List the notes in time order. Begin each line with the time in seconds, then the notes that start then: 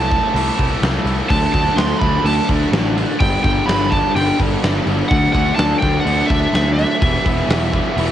Already playing: C2 E3 A3 A5
0.11 A2 E3 A3, kick, snare, crash
0.34 C2 A2 E3 A3, crash
0.59 C2 A2 E3 A3, kick, crash
0.81 C2 A2 E3 A3, snare, crash
0.95 snare
1.04 C2 A2 E3 A3, crash
1.30 D2 D3 F#3 A3 D4 A5, kick, crash
1.53 D2 D3 F#3 A3 D4 A5, kick, crash
1.76 D2 D3 F#3 A3 D4 C6, snare, crash
2.00 D2 D3 F#3 A3 D4 B5, kick, crash
2.24 D2 D3 F#3 A3 D4 A5, crash
2.49 D2 D3 F#3 A3 D4, kick, crash
2.72 A1 D3 F#3 A3 D4, snare, crash
2.96 D3 F#3 A3 D4, crash
3.20 G1 G2 D3 G3 B3 D4 G5, kick, crash
3.42 G1 G2 G5, kick, crash
3.46 G2 D3 G3 B3 D4
3.66 G1 G2 B5, snare, crash
3.70 D3 G3 B3 D4
3.90 G2 D3 G3 A5, kick, crash
3.94 B3 D4
4.15 G1 G2 D3 G3 B3 D4 G5, crash
4.40 G1 G2 D3 G3 B3 D4, kick, crash
4.63 G1 G2 D3 G3 B3 D4, snare, crash
4.86 G1 G2 D3 G3 B3 D4, crash
5.09 D2 D3 F#3 A3 D4 F#5, kick, crash
5.33 D2 D3 F#3 A3 D4 F#5, kick, crash
5.55 D2 D3 F#3 A3 A5, snare, crash
5.60 D4
5.79 D2 D3 F#3 G5, kick, crash
5.83 A3 D4, snare
6.00 F#5
6.05 D2 D3 F#3 A3 D4, crash
6.26 D2 E5
6.30 D3 F#3 A3 D4, kick, crash
6.53 D2 D3 F#3 A3 D4, snare, crash
6.67 snare
6.74 D3 F#3 E5
6.78 A3 D4, crash
7.00 E1 E2 B2 E3 G3 B3 E4, kick, crash
7.25 E1 E2 B2 E3 G3 B3 E4, kick, crash
7.48 E1 E2 B2 E3 G3 B3 E4, snare, crash
7.73 E2 B2 E3 G3 B3 E4, kick, crash
7.96 E1 E2 B2 E3 G3 B3 E4, crash